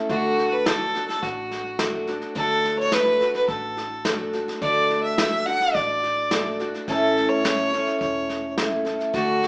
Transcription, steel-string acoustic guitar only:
0.09 D3 A3 D4 F#4 A4
0.66 A3 D4 F#4 A4
0.95 D4 F#4 A4
1.79 A3 D4 F#4 A4
2.07 D4 F#4 A4
2.35 D3 A3 D4 F#4 A4
2.92 A3 D4 F#4 A4
3.20 D4 F#4 A4
4.04 A3 D4 F#4 A4
4.33 D4 F#4 A4
4.62 D3 A3 D4 F#4 A4
5.18 A3 D4 F#4 A4
5.46 D4 F#4 A4
6.31 A3 D4 F#4 A4
6.59 D4 F#4 A4
6.88 A2 E3 A3 C#4 E4 A4
7.44 A3 C#4 E4 A4
7.73 A3 C#4 E4 A4
8.58 A3 C#4 E4 A4
8.85 A3 C#4 E4 A4
9.13 D3 A3 D4 F#4 A4

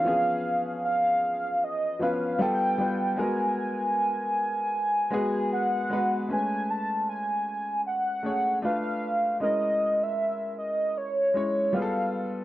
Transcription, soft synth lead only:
Already playing: F5
0.85 F5
1.64 D#5
2.03 F5
2.41 G5
3.19 G#5
5.53 F#5
6.32 G#5
6.70 A5
7.09 G#5
7.87 F#5
8.65 F5
9.41 D#5
10.03 E5
10.58 D#5
10.98 C#5
11.75 F5

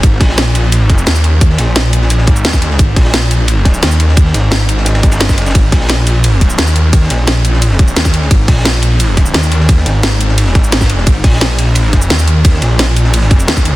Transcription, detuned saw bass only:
0.03 G#1
0.21 A#1
1.07 D#2
1.59 A#1
2.19 A1
2.45 D#2
2.79 G#1
2.96 A#1
3.83 D#2
4.34 G#1
5.18 G1
5.42 F#1
5.55 G#1
5.72 A#1
6.59 D#2
7.10 A#1
7.96 D#2
8.31 G#1
8.48 A#1
9.34 D#2
9.86 G#1
10.21 G#1
10.55 G#1
11.07 G#1
11.24 A#1
12.10 D#2
12.62 A#1
13.48 D#2

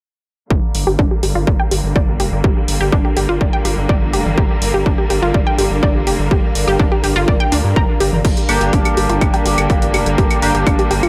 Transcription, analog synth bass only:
0.50 G1
0.75 G1
0.87 G1
0.99 G1
1.23 G1
1.35 G1
1.47 G1
1.71 G1
1.84 G1
1.96 G1
2.20 F1
2.32 G1
2.44 G1
2.68 G1
2.81 G1
2.92 G1
3.17 G1
3.29 G1
3.41 G1
3.65 G1
3.77 G1
3.89 G1
4.13 F1
4.26 G1
4.38 G1
4.62 G1
4.74 G1
4.86 G1
5.10 G1
5.23 G1
5.34 G1
5.59 G1
5.71 G1
5.83 G1
6.07 F1
6.19 G1
6.31 G1
6.55 G1
6.68 G1
6.79 G1
7.04 G1
7.16 G1
7.28 G1
7.52 D2
7.64 G2
7.76 G1
8.00 G1
8.13 G1
8.25 G1
8.49 G1
8.61 G1
8.73 G1
8.97 G1
9.10 G1
9.21 G1
9.46 G1
9.58 G1
9.70 G1
9.94 F1
10.06 G1
10.18 G1
10.42 G1
10.55 G1
10.67 G1
10.91 G1
11.03 G1

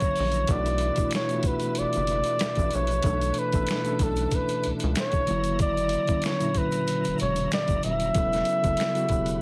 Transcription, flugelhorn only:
Already playing: C#5
0.52 D5
1.15 C#5
1.47 B4
1.79 D5
2.74 C#5
3.39 B4
4.03 A4
4.35 B4
5.00 C#5
5.62 D5
6.26 C#5
6.58 B4
7.21 C#5
7.53 D5
7.85 E5

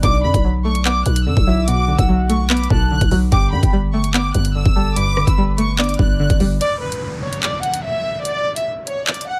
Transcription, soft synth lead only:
0.03 D5
1.47 E5
1.68 F#5
2.50 B5
2.71 A5
3.32 G5
4.76 A5
4.96 B5
5.79 D5

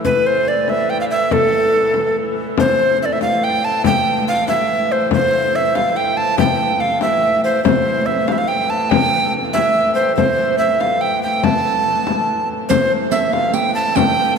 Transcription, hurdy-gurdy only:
Already playing: A2 E3
2.58 A2 E3
7.64 A2 E3
12.68 A2 E3

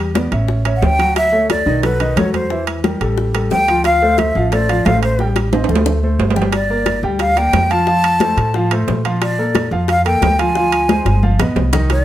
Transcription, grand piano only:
0.15 B3 B4 D5
0.32 C#4 C#5 E5
0.65 C#4 C#5 E5
0.99 F#3 F#4 F#5
1.32 A3 A4 C#5
1.66 D#3 D#4 D#5
1.83 F#3 F#4 A4
2.00 D#3 D#4 D#5
2.17 F#3 F#4 A4
2.50 E3 E4 E5
2.84 G3 G4 A#4
3.01 G3 G4 A4
3.35 G3 G4 A4
3.68 F3 F4 F5
4.02 A3 A4 C5
4.35 F3 F4 F5
4.52 A3 A4 C5
4.69 F3 F4 F5
4.86 A3 A4 C5
5.20 G3 G4 G5
5.53 C4 C5 D#5
5.70 A3 A4 C5
6.03 A3 A4 C5
6.36 G3 G4 G5
6.70 A#3 A#4 D5
7.03 G3 G4 G5
7.37 A#3 A#4 D5
7.71 F3 F4 F5
7.87 F3 F4 F5
8.21 A3 A4 C5
8.55 F3 F4 F5
8.71 A3 A4 C5
9.05 F3 F4 F5
9.39 A#3 A4 A#4
9.72 F3 F4 F5
10.05 A#3 A4 A#4
10.39 F3 F4 F5
10.56 F3 F4 F5
10.90 G#3 G#4 C5
11.23 F3 F4 F5
11.40 B3 B4 D#5
11.73 D#3 D#4 D#5

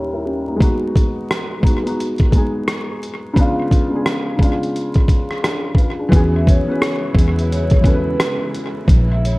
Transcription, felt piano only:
Already playing: D#2 G3 A#3 C#4 E4 G4 C#5
0.13 E4 A#4
0.25 C#4 G4
0.47 A#3 D#4
0.56 G#3 B3
0.60 D#4 F#4
1.60 G#3 B3
1.64 D#4 F#4
1.82 G#3 B3
1.86 D#4 F#4
2.31 G#3 B3
2.35 D#4 G#4
3.34 C#3 G#3 B3
3.39 D4 F4
3.89 C#3 G#3 B3
3.94 D4 G#4
4.36 C#3 G#3 B3
4.41 D4 F4
5.43 D4 G#4
5.77 F4 B4
5.99 D4 G#4
6.09 E3 B3 C#4
6.14 F#4 G#4
6.64 E3 B3 C#4
6.70 F#4 B4
7.80 E3 B3 C#4
7.85 F#4 A4
7.94 B4

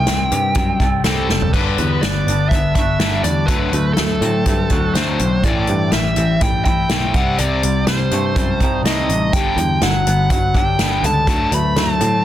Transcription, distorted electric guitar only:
0.08 C3 G3
0.32 C3 G3
0.56 C3 G3
0.82 C3 G3
1.06 C3 G3 C4
1.31 C3 G3
1.55 G2 D3 G3
1.79 G2 D3
2.04 G2 D3
2.29 G2 D3
2.53 G2 D3
2.77 G2 D3
3.01 G2 D3 G3
3.25 G2 D3
3.48 D3 F#3 A3
3.74 D3 F#3
3.97 D3 F#3
4.23 D3 F#3
4.48 D3 F#3
4.72 D3 F#3
4.97 D3 F#3 A3
5.20 D3 F#3
5.45 A2 E3 A3
5.69 A2 E3
5.93 A2 E3
6.17 A2 E3
6.42 A2 E3
6.67 A2 E3
6.91 A2 E3 A3
7.15 C3 G3 C4
7.39 C3 G3 C4
7.63 C3 G3
7.88 C3 G3
8.13 C3 G3
8.37 C3 G3
8.63 C3 G3
8.87 C3 G3 C4
9.11 C3 G3
9.36 G2 D3 G3
9.60 G2 D3
9.83 G2 D3
10.07 G2 D3
10.33 G2 D3
10.57 G2 D3
10.81 G2 D3 G3
11.05 G2 D3
11.28 D3 F#3 A3
11.52 D3 F#3
11.78 D3 F#3
12.01 D3 F#3

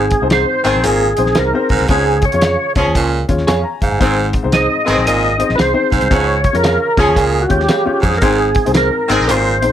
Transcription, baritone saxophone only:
0.83 A#2
1.70 G#2
1.90 G#2
2.96 A#2
3.82 G#2
4.01 G#2
5.06 A#2
5.92 G#2
6.10 G#2
7.16 A#2
8.01 G#2
8.21 G#2
9.28 A#2

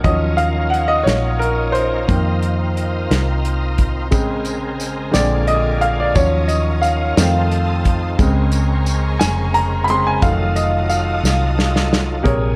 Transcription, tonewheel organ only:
0.03 C#4 D#4 F4 A#4
2.07 C4 A#4
4.13 C#3 G#3 C4 A#4
5.15 D3 A#3 F4 G#4
6.17 C#4 D#4 A#4
7.20 C4 A4
8.20 C#3 G#3 A#4
10.23 F#3 D#4 F4 A4
12.27 C3 G#3 A#3 G#4

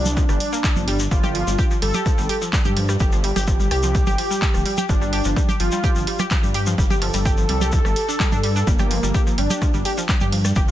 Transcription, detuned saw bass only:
Already playing: C2
0.29 G1
0.76 G1
1.11 G1
1.47 G1
1.82 G1
2.18 G1
2.65 G2
3.00 G1
3.36 G1
3.71 C2
4.07 G1
4.54 D1
4.89 G1
5.25 G1
5.60 G1
5.96 G1
6.43 G2
6.78 G1
7.14 G1
7.49 C2
7.85 G1
8.32 G2
8.67 G1
9.03 G1
9.38 G1
9.74 G1
10.21 G2
10.56 G1

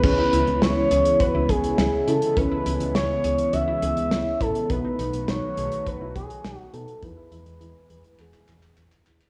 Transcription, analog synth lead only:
0.04 B4
0.62 C#5
1.20 B4
1.49 G#4
2.07 A4
2.36 B4
2.95 C#5
3.53 E5
4.40 A4
4.69 B4
5.28 C#5
5.86 B4
6.15 G#4
6.57 F#4
6.74 A4
7.03 B4
8.19 G#4

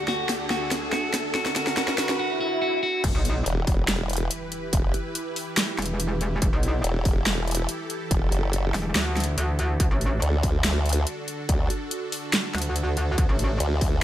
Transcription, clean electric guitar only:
0.08 F#4
0.50 F#4
0.93 F#4
1.35 F#4
1.56 F#4
1.77 F#4
1.98 F#4
2.19 F#4
2.41 F#4
2.62 F#4
2.83 F#4

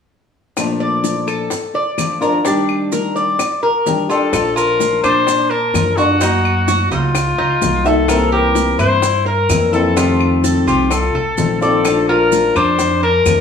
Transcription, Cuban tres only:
0.80 D5
1.28 A4
1.75 D5
2.22 A#4
2.45 D4
2.92 A#4
3.16 D5
3.63 A#4
4.10 F4
4.33 A4
4.56 F4
5.04 D4
5.51 A5
5.97 F#4
6.21 D#4
6.68 F#4
6.92 D#4
7.38 D#4
7.86 E5
8.09 A#4
8.32 G4
8.79 E4
9.26 A#4
9.73 A4
9.97 F4
10.44 A4
10.67 F4
11.15 A4
11.62 D5
11.86 A4
12.09 F4
12.56 D4
13.03 A5

